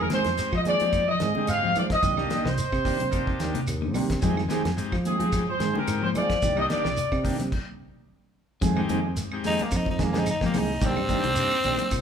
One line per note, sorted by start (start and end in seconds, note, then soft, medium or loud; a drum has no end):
0.00 0.11 C4 soft
0.00 0.10 G#4 medium
0.00 0.06 A#4 medium
0.09 0.28 D#3 medium
0.09 0.29 D#3 medium
0.09 0.23 G#3 medium
0.09 0.28 G#3 medium
0.09 0.23 C4 medium
0.09 0.28 C4 medium
0.09 0.23 D#4 medium
0.09 0.23 G4 medium
0.09 0.29 G#4 medium
0.09 0.51 C5 medium
0.09 snare medium
0.09 closed hi-hat soft
0.09 high conga loud
0.09 shekere soft
0.24 0.36 F2 loud
0.24 snare medium
0.24 closed hi-hat soft
0.37 0.56 G#3 medium
0.37 0.56 C4 medium
0.37 0.57 D#4 medium
0.37 0.57 G4 medium
0.37 closed hi-hat medium
0.37 shekere medium
0.53 0.76 F3 loud
0.53 0.60 D#5 medium
0.53 kick medium
0.53 claves medium
0.65 0.83 D#3 medium
0.65 0.83 G#3 medium
0.65 0.83 C4 medium
0.65 0.83 G#4 medium
0.65 1.06 D5 loud
0.65 closed hi-hat soft
0.65 high conga medium
0.65 shekere soft
0.79 1.15 F3 medium
0.79 1.04 G#3 medium
0.79 1.04 C4 medium
0.79 1.04 D#4 medium
0.79 1.04 G4 medium
0.79 closed hi-hat soft
0.79 high conga medium
0.93 kick medium
0.93 closed hi-hat medium
0.93 high conga medium
0.93 claves medium
0.93 shekere medium
1.08 1.16 F3 medium
1.08 1.46 D#5 medium
1.20 1.34 G#2 medium
1.20 1.36 D#3 medium
1.20 1.30 D#3 medium
1.20 1.35 G#3 medium
1.20 1.35 C4 medium
1.20 1.34 G#4 medium
1.20 snare medium
1.20 closed hi-hat soft
1.20 shekere soft
1.35 1.54 D3 medium
1.35 1.71 G#3 medium
1.35 1.51 G#3 soft
1.35 1.51 C4 soft
1.35 1.71 C4 medium
1.35 1.71 D#4 medium
1.35 1.72 G4 medium
1.35 1.51 G#4 soft
1.35 high conga loud
1.47 1.77 G#2 loud
1.47 1.76 F5 loud
1.47 closed hi-hat medium
1.47 claves medium
1.47 shekere medium
1.63 1.81 F3 medium
1.63 high conga medium
1.75 1.92 D#3 soft
1.75 1.99 F3 medium
1.75 1.93 G#3 medium
1.75 1.93 C4 medium
1.75 1.84 D5 medium
1.75 closed hi-hat medium
1.75 low conga medium
1.75 claves medium
1.75 shekere soft
1.90 2.43 D#5 medium
1.90 kick medium
1.90 snare medium
1.90 closed hi-hat soft
2.02 2.26 C2 loud
2.02 2.18 D#3 medium
2.02 2.17 A#3 medium
2.02 2.16 D4 medium
2.02 2.16 G4 medium
2.02 kick medium
2.02 closed hi-hat medium
2.02 low conga medium
2.02 shekere medium
2.17 2.36 G3 medium
2.17 2.47 A#3 medium
2.17 2.29 A#3 soft
2.17 2.29 D4 soft
2.17 2.47 D4 medium
2.17 2.48 D#4 medium
2.17 2.30 G4 soft
2.17 2.48 G4 medium
2.17 snare soft
2.17 claves medium
2.30 2.48 D#3 medium
2.30 2.48 A#3 medium
2.30 2.48 D4 medium
2.30 2.48 G4 medium
2.30 snare medium
2.30 closed hi-hat soft
2.30 high conga loud
2.30 shekere soft
2.45 2.56 C2 medium
2.45 2.63 C3 medium
2.45 3.52 C5 medium
2.45 snare medium
2.58 closed hi-hat medium
2.58 shekere medium
2.72 2.96 C3 loud
2.72 kick medium
2.72 snare soft
2.72 claves medium
2.84 3.02 D#3 medium
2.84 2.98 A#3 medium
2.84 3.03 A#3 medium
2.84 3.03 D4 medium
2.84 2.98 D4 medium
2.84 2.98 D#4 medium
2.84 3.03 G4 medium
2.84 2.99 G4 medium
2.84 kick medium
2.84 open hi-hat medium
2.84 high conga medium
2.84 shekere soft
3.00 3.35 C3 medium
3.00 closed hi-hat medium
3.00 high conga medium
3.00 low conga medium
3.11 3.60 A#3 medium
3.11 3.61 D4 medium
3.11 3.61 D#4 medium
3.11 3.61 G4 medium
3.11 kick medium
3.11 closed hi-hat medium
3.11 high conga medium
3.11 claves medium
3.11 shekere medium
3.27 muted clean electric guitar stroke medium
3.27 kick medium
3.39 3.53 D#2 medium
3.39 3.57 D#3 medium
3.39 3.58 A#3 medium
3.39 3.58 D4 medium
3.39 3.58 G4 medium
3.39 snare medium
3.39 closed hi-hat medium
3.39 shekere soft
3.55 3.72 C3 medium
3.55 closed hi-hat medium
3.55 high conga loud
3.67 3.95 D#2 loud
3.67 closed hi-hat medium
3.67 claves medium
3.67 shekere medium
3.82 3.90 D3 medium
3.82 high conga medium
3.94 4.19 C3 loud
3.94 4.12 D#3 medium
3.94 4.13 G3 medium
3.94 4.13 A#3 medium
3.94 4.13 D4 medium
3.94 4.13 G4 medium
3.94 open hi-hat medium
3.94 high conga medium
3.94 low conga medium
3.94 claves medium
3.94 shekere soft
4.10 kick medium
4.10 snare medium
4.10 closed hi-hat medium
4.21 4.46 F2 loud
4.21 4.40 D#3 medium
4.21 4.32 F3 medium
4.21 4.35 G#3 medium
4.21 4.40 G#3 medium
4.21 4.35 C4 medium
4.21 4.41 C4 medium
4.21 4.36 D#4 medium
4.21 4.36 G4 medium
4.21 4.41 G#4 loud
4.21 kick medium
4.21 closed hi-hat medium
4.21 low conga medium
4.21 shekere medium
4.37 4.45 D#3 medium
4.37 snare soft
4.37 claves medium
4.48 4.67 D#3 medium
4.48 4.68 D#3 medium
4.48 4.62 G#3 medium
4.48 4.68 G#3 medium
4.48 4.63 C4 medium
4.48 4.68 C4 medium
4.48 4.63 D#4 medium
4.48 4.63 G4 loud
4.48 4.68 G#4 medium
4.48 snare medium
4.48 closed hi-hat medium
4.48 high conga loud
4.48 shekere soft
4.65 4.76 F2 loud
4.65 snare medium
4.65 closed hi-hat medium
4.76 4.96 G#3 medium
4.76 4.96 C4 medium
4.76 4.96 D#4 medium
4.76 4.97 G4 medium
4.76 closed hi-hat medium
4.76 shekere medium
4.92 5.16 F3 loud
4.92 kick medium
4.92 snare soft
4.92 claves medium
5.05 5.23 D#3 medium
5.05 5.23 G#3 medium
5.05 5.23 C4 medium
5.05 5.45 G#4 medium
5.05 5.24 G#4 medium
5.05 closed hi-hat medium
5.05 high conga medium
5.05 shekere soft
5.19 5.54 F3 loud
5.19 5.43 G#3 medium
5.19 5.43 C4 medium
5.19 5.44 D#4 medium
5.19 5.44 G4 medium
5.19 closed hi-hat medium
5.19 high conga medium
5.19 low conga medium
5.33 kick medium
5.33 closed hi-hat medium
5.33 claves medium
5.33 shekere medium
5.47 5.55 F3 medium
5.47 5.74 C5 medium
5.60 5.73 G#2 medium
5.60 5.69 D#3 medium
5.60 5.77 D#3 medium
5.60 5.78 G#3 medium
5.60 5.78 C4 medium
5.60 5.78 G#4 medium
5.60 snare medium
5.60 closed hi-hat medium
5.60 shekere soft
5.73 5.92 D3 medium
5.73 6.09 G#3 medium
5.73 6.09 C4 medium
5.73 6.10 D#4 medium
5.73 6.10 G4 medium
5.73 6.01 A#4 medium
5.73 high conga medium
5.87 6.17 G#2 loud
5.87 closed hi-hat medium
5.87 claves medium
5.87 shekere medium
6.01 6.19 F3 medium
6.01 6.08 C5 medium
6.01 high conga medium
6.15 6.32 D#3 medium
6.15 6.39 F3 medium
6.15 6.33 G#3 medium
6.15 6.33 C4 medium
6.15 6.33 G#4 medium
6.15 6.54 D5 loud
6.15 closed hi-hat soft
6.15 high conga medium
6.15 low conga medium
6.15 claves medium
6.15 shekere soft
6.30 kick medium
6.30 snare medium
6.30 closed hi-hat medium
6.42 6.66 C2 loud
6.42 6.60 D#3 medium
6.42 6.60 A#3 medium
6.42 6.60 D4 medium
6.42 6.60 G4 medium
6.42 kick medium
6.42 snare soft
6.42 closed hi-hat medium
6.42 low conga medium
6.42 shekere medium
6.56 6.74 G3 medium
6.56 6.86 A#3 medium
6.56 6.86 D4 medium
6.56 6.87 D#4 medium
6.56 6.87 G4 medium
6.56 6.65 D#5 medium
6.56 claves medium
6.69 6.87 D#3 medium
6.69 6.87 A#3 medium
6.69 6.87 D4 medium
6.69 6.88 G4 medium
6.69 7.22 D5 medium
6.69 snare medium
6.69 closed hi-hat soft
6.69 high conga loud
6.69 shekere soft
6.84 6.96 C2 loud
6.84 7.02 C3 medium
6.84 snare medium
6.97 closed hi-hat medium
6.97 shekere medium
7.12 7.36 C3 loud
7.12 kick medium
7.12 snare soft
7.12 claves medium
7.23 7.42 D#3 soft
7.23 7.37 A#3 medium
7.23 7.42 A#3 medium
7.23 7.37 D4 medium
7.23 7.43 D4 medium
7.23 7.37 D#4 medium
7.23 7.38 G4 medium
7.23 7.43 G4 medium
7.23 kick medium
7.23 open hi-hat medium
7.23 high conga medium
7.23 shekere soft
7.39 7.50 C3 medium
7.39 snare soft
7.39 closed hi-hat medium
7.39 low conga medium
7.52 kick medium
7.52 crash medium
8.61 8.85 F2 loud
8.61 8.79 D#3 medium
8.61 8.71 F3 medium
8.61 8.79 G#3 medium
8.61 8.79 C4 medium
8.61 8.80 G#4 medium
8.61 kick medium
8.61 closed hi-hat medium
8.61 low conga medium
8.61 shekere medium
8.76 8.85 D#3 medium
8.76 9.00 G#3 loud
8.76 9.00 C4 loud
8.76 9.00 D#4 loud
8.76 9.00 G4 loud
8.76 claves medium
8.89 9.13 F2 medium
8.89 9.06 D#3 medium
8.89 9.07 D#3 medium
8.89 9.07 G#3 medium
8.89 9.07 C4 medium
8.89 9.07 G#4 medium
8.89 closed hi-hat soft
8.89 high conga loud
8.89 shekere soft
9.17 snare soft
9.17 closed hi-hat medium
9.17 shekere medium
9.32 9.67 G#3 medium
9.32 9.67 C4 medium
9.32 9.68 D#4 medium
9.32 9.68 G4 medium
9.32 claves medium
9.44 9.57 F2 medium
9.44 9.61 D#3 medium
9.44 9.61 G#3 medium
9.44 9.62 C4 medium
9.44 9.64 D#4 loud
9.44 9.62 G#4 medium
9.44 open hi-hat medium
9.44 high conga medium
9.44 shekere soft
9.59 9.78 A#3 medium
9.59 closed hi-hat medium
9.59 high conga medium
9.59 low conga medium
9.71 10.31 F2 loud
9.71 kick medium
9.71 closed hi-hat medium
9.71 high conga medium
9.71 claves medium
9.71 shekere medium
9.77 9.88 D#4 medium
9.86 9.94 F3 medium
9.86 kick medium
9.91 10.05 D#4 medium
9.98 10.13 D#3 soft
9.98 10.09 D#3 medium
9.98 10.13 G#3 medium
9.98 10.12 C4 medium
9.98 10.12 G#4 medium
9.98 kick medium
9.98 snare medium
9.98 closed hi-hat soft
9.98 shekere soft
10.03 10.20 A#3 medium
10.13 10.31 D3 medium
10.13 10.24 G#3 medium
10.13 10.30 G#3 soft
10.13 10.29 C4 soft
10.13 10.25 C4 medium
10.13 10.25 D#4 medium
10.13 10.25 G4 medium
10.13 10.29 G#4 medium
10.13 snare medium
10.13 high conga loud
10.19 10.28 D#4 medium
10.26 closed hi-hat medium
10.26 claves medium
10.26 shekere medium
10.31 10.42 D#4 medium
10.41 10.59 F3 medium
10.41 10.59 G#3 medium
10.41 10.59 C4 medium
10.41 10.59 D#4 medium
10.41 10.59 G4 medium
10.41 muted fingered electric bass stroke soft
10.41 kick medium
10.41 snare medium
10.41 high conga medium
10.45 10.60 A#3 medium
10.53 10.78 C2 medium
10.53 10.71 D#3 medium
10.53 10.71 G#3 medium
10.53 10.71 C4 medium
10.53 10.71 G#4 medium
10.53 snare soft
10.53 open hi-hat medium
10.53 high conga medium
10.53 low conga medium
10.53 claves medium
10.53 shekere soft
10.58 10.87 D#4 medium
10.81 10.94 C2 medium
10.81 10.98 D#3 medium
10.81 10.94 A#3 medium
10.81 10.99 A#3 medium
10.81 10.94 D4 medium
10.81 10.99 D4 medium
10.81 10.94 D#4 medium
10.81 10.99 G4 medium
10.81 10.95 G4 medium
10.81 kick loud
10.81 snare soft
10.81 closed hi-hat medium
10.81 low conga medium
10.81 shekere medium
10.86 12.01 C4 loud
10.97 11.20 G2 loud
10.97 11.14 G3 medium
10.97 claves medium
11.07 11.26 D#3 medium
11.07 11.56 A#3 medium
11.07 11.27 A#3 medium
11.07 11.57 D4 medium
11.07 11.27 D4 medium
11.07 11.57 D#4 medium
11.07 11.57 G4 loud
11.07 11.27 G4 medium
11.07 kick medium
11.07 closed hi-hat soft
11.07 high conga loud
11.07 shekere soft
11.24 11.35 C2 loud
11.24 11.42 C3 medium
11.24 closed hi-hat medium
11.36 11.49 G2 loud
11.36 closed hi-hat medium
11.36 shekere medium
11.51 muted fingered electric bass stroke soft
11.51 claves medium
11.64 11.77 A#1 medium
11.64 11.81 D#3 medium
11.64 11.82 A#3 medium
11.64 11.82 D4 medium
11.64 11.82 G4 medium
11.64 closed hi-hat medium
11.64 high conga medium
11.64 shekere soft
11.79 muted fingered electric bass stroke soft
11.79 closed hi-hat medium
11.79 high conga medium
11.79 low conga medium
11.91 12.01 C2 loud
11.91 kick medium
11.91 snare soft
11.91 closed hi-hat medium
11.91 claves medium
11.91 shekere medium